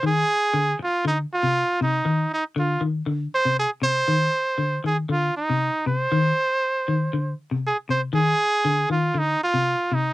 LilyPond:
<<
  \new Staff \with { instrumentName = "Trumpet" } { \time 4/4 \key f \dorian \tempo 4 = 118 aes'4. f'8 ees'8 f'4 ees'8~ | ees'8 ees'8 f'8 r4 c''8 aes'8 c''8~ | c''4. aes'8 f'8 ees'4 c''8~ | c''2~ c''8 r8 aes'8 c''8 |
aes'4. f'8 ees'8 f'4 ees'8 | }
  \new Staff \with { instrumentName = "Clean electric guitar" } { \clef bass \time 4/4 \key f \dorian ees8 r8 d8 r8 d8 r16 c8 r16 c8 | ees8 r8 d8 ees8 d8 r16 c8 r16 c8 | ees8 r8 d8 ees8 d8 r16 c8 r16 c8 | ees8 r4 ees8 d8 r16 c8 r16 c8 |
ees8 r8 d8 ees8 d8 r16 c8 r16 c8 | }
>>